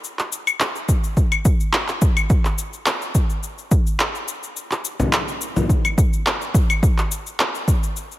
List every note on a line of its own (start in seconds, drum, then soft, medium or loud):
0.04 cabasa soft
0.19 clap soft
0.19 cabasa soft
0.32 cabasa medium
0.47 cabasa soft
0.47 claves medium
0.60 clap medium
0.60 cabasa soft
0.76 cabasa soft
0.89 kick medium
0.89 cabasa medium
1.04 cabasa soft
1.17 kick medium
1.17 cabasa soft
1.32 cabasa soft
1.32 claves medium
1.45 kick loud
1.45 cabasa medium
1.60 cabasa soft
1.73 clap loud
1.73 cabasa soft
1.88 clap soft
1.88 cabasa soft
2.02 kick medium
2.02 cabasa medium
2.17 cabasa soft
2.17 claves medium
2.30 kick loud
2.30 cabasa soft
2.45 clap soft
2.45 cabasa soft
2.58 cabasa medium
2.73 cabasa soft
2.86 clap loud
2.86 cabasa soft
3.02 cabasa soft
3.15 kick medium
3.15 cabasa medium
3.30 cabasa soft
3.43 cabasa soft
3.58 cabasa soft
3.71 kick medium
3.71 cabasa medium
3.87 cabasa soft
4.00 clap loud
4.00 cabasa soft
4.15 cabasa soft
4.28 cabasa medium
4.43 cabasa soft
4.57 cabasa soft
4.71 clap soft
4.71 cabasa soft
4.85 cabasa medium
5.00 frame drum medium
5.00 cabasa soft
5.13 clap loud
5.13 cabasa soft
5.28 cabasa soft
5.41 cabasa medium
5.56 frame drum medium
5.56 cabasa soft
5.69 kick medium
5.69 cabasa soft
5.85 cabasa soft
5.85 claves medium
5.98 kick medium
5.98 cabasa medium
6.13 cabasa soft
6.27 clap loud
6.27 cabasa soft
6.42 cabasa soft
6.54 kick loud
6.54 cabasa medium
6.70 cabasa soft
6.70 claves medium
6.83 kick loud
6.83 cabasa soft
6.98 clap soft
6.98 cabasa soft
7.12 cabasa medium
7.27 cabasa soft
7.40 clap loud
7.40 cabasa soft
7.55 cabasa soft
7.68 kick medium
7.68 cabasa medium
7.83 cabasa soft
7.96 cabasa soft
8.12 cabasa soft